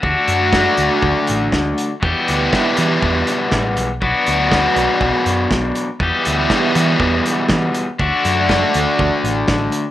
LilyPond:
<<
  \new Staff \with { instrumentName = "Clean electric guitar" } { \time 4/4 \key e \minor \tempo 4 = 121 <fis a d' fis'>1 | <e b e' g'>1 | <fis b d' fis'>1 | <e b e' g'>1 |
<a d' fis'>1 | }
  \new Staff \with { instrumentName = "Overdriven electric guitar" } { \time 4/4 \key e \minor <d a d' fis'>1 | <e, b, e g b g'>1 | <b, fis b d' fis'>1 | <e, b, e g b g'>1 |
<d a d' fis'>1 | }
  \new Staff \with { instrumentName = "Picked electric bass" } { \clef bass \time 4/4 \key e \minor d,16 r16 fis,4 d,16 r16 d,16 r16 a,,8 d,8 r8 | e,16 r16 d,8 r8 e8 e,8 r8 a,,8 b,,8 | b,,16 r16 d,4 b,,16 r16 b,,16 r16 fis,8 b,,8 r8 | e,16 r16 d,8 r8 e8 e,8 r8 e8 r8 |
d,16 r16 fis,4 d,16 r16 d,16 r16 a,,8 a,,8 r8 | }
  \new DrumStaff \with { instrumentName = "Drums" } \drummode { \time 4/4 bd8 hh8 <bd sn>8 hh8 bd8 hh8 <bd sn>8 hh8 | bd8 hh8 <bd sn>8 hh8 bd8 hh8 <bd sn>8 hh8 | bd8 hh8 <bd sn>8 hh8 bd8 hh8 <bd sn>8 hh8 | bd8 hh8 <bd sn>8 hh8 bd8 <hh sn>8 <bd sn>8 hh8 |
bd8 hh8 <bd sn>8 hh8 bd8 hh8 <bd sn>8 hh8 | }
>>